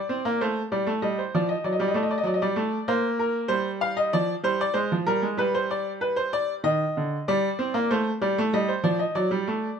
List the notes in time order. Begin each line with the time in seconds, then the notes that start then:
Already playing: D5
0.09 C4
0.25 A#3
0.41 A3 C5
0.72 G3 D5
0.87 A3
1.02 G3 D#5
1.18 C5
1.34 F3 D5
1.49 D#5
1.64 F#3 D5
1.73 D#5
1.79 G3 D5
1.88 D#5
1.94 A3 D5
2.03 D#5
2.11 D5
2.18 D#5
2.23 F#3 D5
2.34 D#5
2.42 G3 D5
2.56 A3
2.88 A#3 C5
3.19 A#4
3.48 G3 C5
3.81 F5
3.97 D#5
4.13 F3 D5
4.43 G3 C5
4.61 D5
4.74 G#3 C5
4.92 F3
5.07 G3 A#4
5.22 G#3
5.37 G3 B4
5.54 C5
5.71 D5
6.01 B4
6.16 C5
6.33 D5
6.64 D#3 D#5
6.97 D3
7.28 G3 D5
7.59 C4
7.74 A#3
7.90 A3 C5
8.21 G3 D5
8.38 A3
8.53 G3 D#5
8.68 C5
8.84 F3 D5
8.99 D#5
9.15 F#3 D5
9.31 G3
9.48 A3